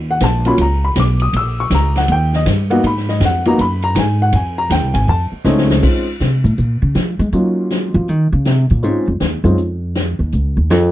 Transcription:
Already playing: upright bass D#2
0.11 upright piano F#5
0.20 upright bass A#1, upright piano A5, kick, snare, hi-hat pedal, ride
0.45 upright piano F#3 A#3 C#4 F4 B5, ride
0.58 upright bass C#2, upright piano A#5, kick, ride
0.85 upright piano B5
0.96 upright bass B1, kick, snare, hi-hat pedal, ride
1.00 upright piano D6
1.20 upright piano D#6, ride
1.33 upright bass A#1, upright piano E6, kick, ride
1.60 upright piano C#6
1.70 upright bass C#2, kick, snare, hi-hat pedal, ride
1.75 upright piano A#5
1.96 upright piano F#5, snare, ride
2.08 upright bass D#2, kick, ride
2.12 upright piano G5
2.33 upright piano D#5, snare
2.46 upright bass G2, kick, snare, hi-hat pedal, ride
2.70 upright piano A#3 B3 D#4 F#4, ride
2.83 upright bass G#2, upright piano B5, kick, ride
2.96 snare
3.08 upright piano D#5, snare
3.20 upright bass F2, kick, snare, hi-hat pedal, ride
3.25 upright piano F#5
3.45 upright piano A#3 B3 D#4 F#4 A#5, ride
3.58 upright bass F#2, upright piano B5, kick, ride
3.82 upright piano A#5, ride
3.95 upright bass G#2, upright piano G#5, kick, snare, hi-hat pedal, ride
4.22 upright piano F#5
4.32 upright bass F2, upright piano G#5, kick, ride
4.58 upright piano A#5
4.70 upright bass D#2, upright piano G5, kick, snare, hi-hat pedal, ride
4.81 upright bass C2
4.94 upright bass G#1, upright piano G#5, ride
5.08 upright bass F2, upright piano A5, kick
5.32 muted upright bass stroke
5.45 upright bass C#2, upright piano A3 C4 C#4 D#4, snare, hi-hat pedal
5.58 snare
5.70 snare
5.83 upright piano G#3 C4 C#4 D#4 F4, kick, crash
6.20 upright bass C3, snare, closed hi-hat
6.44 upright bass A2, closed hi-hat
6.58 upright bass A#2, closed hi-hat
6.82 upright bass C#3
6.95 upright bass F3, snare, closed hi-hat
7.19 upright bass G#3, closed hi-hat
7.32 upright bass F#3, upright piano F#3 A#3 C#4 D#4 F4, closed hi-hat
7.70 snare, closed hi-hat
7.94 upright bass F3
8.08 upright bass D#3, closed hi-hat
8.32 upright bass C#3
8.45 upright bass C3, snare, closed hi-hat
8.70 upright bass A#2, closed hi-hat
8.83 upright bass G#2, upright piano G#3 C4 C#4 D#4 F4, closed hi-hat
9.07 upright bass F2
9.20 upright bass D#2, snare, closed hi-hat
9.44 upright bass F#2, upright piano G#3 C4 C#4 D#4 F4, closed hi-hat
9.58 upright bass F2, closed hi-hat
9.95 snare, closed hi-hat
10.19 upright bass D#2
10.32 upright bass C#2, closed hi-hat
10.57 upright bass D#2
10.70 upright bass F2, snare, closed hi-hat

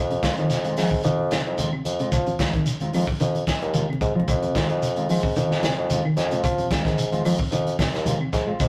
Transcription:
Already playing: bassoon F2
0.10 clean electric guitar C3, muted clean electric guitar stroke, closed hi-hat, high conga
0.22 clean electric guitar G#3 C4 F4, muted clean electric guitar stroke, kick, snare, closed hi-hat, high conga, claves, shekere
0.37 bassoon F2, clean electric guitar D#3, muted clean electric guitar stroke, closed hi-hat
0.50 snare, closed hi-hat, shekere
0.64 clean electric guitar D#3 G#3 C4 F4, closed hi-hat
0.77 bassoon G#2, clean electric guitar D#3 F3 G#3 C4 F4, snare, open hi-hat, claves, shekere
0.91 muted clean electric guitar stroke, kick, high conga
1.04 bassoon F2, clean electric guitar D#3, muted clean electric guitar stroke, closed hi-hat, shekere
1.19 muted clean electric guitar stroke
1.31 clean electric guitar C3, snare, closed hi-hat, high conga, claves, shekere
1.46 bassoon F2
1.58 clean electric guitar D#3 G#3 C4 F4, closed hi-hat, high conga, low conga, shekere
1.73 clean electric guitar C3, muted clean electric guitar stroke, claves
1.85 bassoon F2, muted clean electric guitar stroke, closed hi-hat, high conga, shekere
1.99 clean electric guitar C3 G#3 C4 F4, closed hi-hat
2.12 bassoon F3, kick, closed hi-hat, low conga, claves, shekere
2.26 clean electric guitar C3, muted clean electric guitar stroke, closed hi-hat, high conga
2.39 clean electric guitar D#3 G#3 C4 F4, kick, snare, closed hi-hat, high conga, claves, shekere
2.53 clean electric guitar D#3, muted clean electric guitar stroke, kick, closed hi-hat, high conga
2.66 closed hi-hat, shekere
2.80 clean electric guitar D#3 G#3 C4 F4, closed hi-hat, high conga
2.93 bassoon F2, clean electric guitar D#3 F3 G#3 C4 F4, open hi-hat, claves, shekere
3.07 muted clean electric guitar stroke, kick, high conga
3.20 bassoon F2, clean electric guitar D#3, muted clean electric guitar stroke, closed hi-hat, shekere
3.35 muted clean electric guitar stroke, closed hi-hat
3.47 bassoon F2, muted clean electric guitar stroke, kick, snare, closed hi-hat, high conga, claves, shekere
3.61 bassoon D#2, closed hi-hat
3.74 clean electric guitar D#3 G#3 F4, muted clean electric guitar stroke, closed hi-hat, high conga, shekere
3.89 clean electric guitar C3, muted clean electric guitar stroke, claves
3.93 high conga
4.01 bassoon G#2, muted clean electric guitar stroke, kick, closed hi-hat, low conga, shekere
4.11 low conga
4.15 bassoon F2, clean electric guitar F3 G#3 C4 F4
4.20 low conga
4.28 bassoon F2, kick, closed hi-hat, low conga, claves, shekere
4.42 clean electric guitar C3, muted clean electric guitar stroke, closed hi-hat, high conga
4.55 clean electric guitar D#3 G#3 F4, muted clean electric guitar stroke, kick, snare, closed hi-hat, high conga, claves, shekere
4.69 bassoon F2, muted clean electric guitar stroke, closed hi-hat
4.82 closed hi-hat, shekere
4.96 clean electric guitar D#3 G#3 C4 F4, closed hi-hat
5.09 bassoon G#2, clean electric guitar D#3 F3 G#3 C4 F4, open hi-hat, claves, shekere
5.23 muted clean electric guitar stroke, kick, high conga, low conga
5.36 bassoon F2, clean electric guitar D#3, muted clean electric guitar stroke, closed hi-hat, shekere
5.51 muted clean electric guitar stroke, snare
5.63 clean electric guitar C3, snare, closed hi-hat, high conga, claves, shekere
5.78 bassoon F2
5.90 clean electric guitar D#3 G#3 C4 F4, closed hi-hat, high conga, low conga, shekere
6.05 clean electric guitar D#3, muted clean electric guitar stroke, claves
6.16 bassoon F2, muted clean electric guitar stroke, snare, closed hi-hat, high conga, shekere
6.31 clean electric guitar C3 G#3 C4 F4, closed hi-hat
6.44 bassoon F3, kick, closed hi-hat, low conga, claves, shekere
6.58 clean electric guitar C3, muted clean electric guitar stroke, closed hi-hat, high conga
6.71 clean electric guitar D#3 G#3 C4 F4, kick, snare, closed hi-hat, high conga, claves, shekere
6.85 bassoon G#2, clean electric guitar D#3, muted clean electric guitar stroke, kick, snare, closed hi-hat, high conga
6.98 closed hi-hat, shekere
7.12 clean electric guitar D#3 G#3 C4 F4, closed hi-hat, high conga
7.25 bassoon F2, clean electric guitar D#3 F3 G#3 C4 F4, open hi-hat, claves, shekere
7.39 muted clean electric guitar stroke, kick, high conga, low conga
7.51 bassoon F2, clean electric guitar D#3, muted clean electric guitar stroke, closed hi-hat, shekere
7.66 muted clean electric guitar stroke, closed hi-hat
7.79 bassoon F2, clean electric guitar C3, muted clean electric guitar stroke, kick, snare, closed hi-hat, high conga, claves, shekere
7.93 bassoon D#2, snare, closed hi-hat
8.06 clean electric guitar D#3 G#3 C4 F4, closed hi-hat, high conga, low conga, shekere
8.21 clean electric guitar C3, muted clean electric guitar stroke, claves
8.33 bassoon G#2, muted clean electric guitar stroke, kick, snare, closed hi-hat, high conga, shekere
8.47 bassoon F2, clean electric guitar G#3 C4 F4
8.60 bassoon F2, kick, closed hi-hat, low conga, claves, shekere

